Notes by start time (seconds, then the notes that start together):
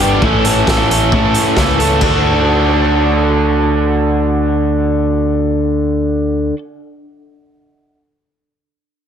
Already playing: G1
0.00 G3 B3 D4 G4
0.22 A1 A2 E3 A3 C#4, kick
0.26 A4
0.45 A3 C#4 A4, closed hi-hat
0.67 A1 E3 A3 C#4 A4, kick, snare
0.90 A3 C#4 A4, closed hi-hat
1.11 A2 E3 A3 C#4 A4, kick
1.34 closed hi-hat
1.57 C#2 E3 A3 C#4 A4, kick, snare
1.79 A3 C#4 A4, closed hi-hat
2.01 D2 D3 D4 F#4, kick, crash
2.06 A4